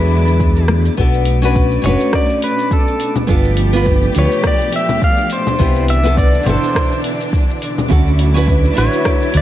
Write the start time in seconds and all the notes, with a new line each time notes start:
Already playing: E2 D3 F#3 G#3 B3 D4 E4 G#4 B4 D7
0.27 shaker
0.40 kick, shaker
0.56 shaker
0.68 cross-stick, high conga
0.85 shaker
0.97 B1 B2 A3 B3 D4 F#4 A4 D7, kick, shaker
1.14 shaker
1.25 open hi-hat
1.42 C#4 D4 F#4 B4, shaker
1.55 kick, shaker
1.72 shaker
1.82 F#1 C#4 D4 F#4 C#5, open hi-hat, low conga
1.88 B4
2.01 shaker
2.13 D5, kick, cross-stick, shaker
2.30 shaker
2.42 B4, open hi-hat
2.59 shaker
2.71 A4, kick, shaker
2.88 shaker
3.00 open hi-hat
3.16 low conga, shaker
3.27 G1 F3 A3 B3 D4 F4 G4 A4, kick, shaker
3.45 shaker
3.57 open hi-hat
3.73 B3 D4 F4 B4, shaker
3.86 kick, shaker
4.03 shaker
4.13 D2 B3 D4 F4, open hi-hat
4.19 B4 C#5
4.32 shaker
4.44 D5, kick, cross-stick, shaker
4.61 shaker
4.73 E5, open hi-hat
4.89 low conga, shaker
5.02 F5, kick, shaker
5.18 shaker
5.30 C5, open hi-hat
5.47 low conga, shaker
5.59 C2 D3 E3 B3 D4 E4 G4, kick, shaker
5.76 shaker
5.88 E5, open hi-hat
6.03 B3 D4 A4, shaker
6.17 D5, kick, shaker
6.35 shaker
6.43 G1 B2 D4 C5, open hi-hat, low conga
6.47 E4 A4
6.64 shaker
6.75 kick, cross-stick, shaker
6.92 shaker
7.04 open hi-hat
7.21 shaker
7.33 kick, shaker
7.50 shaker
7.62 open hi-hat
7.78 low conga, shaker
7.88 D2 D3 F#3 A3 C#4 E4 F#4 A4, kick, shaker
8.08 shaker
8.19 open hi-hat
8.34 C#4 E4 F#4 B4, shaker
8.48 kick, shaker
8.65 shaker
8.73 D4 E4 F#4, open hi-hat
8.78 A1 B4 C#5
8.94 shaker
9.05 kick, cross-stick, shaker
9.23 shaker
9.34 D2 D5, open hi-hat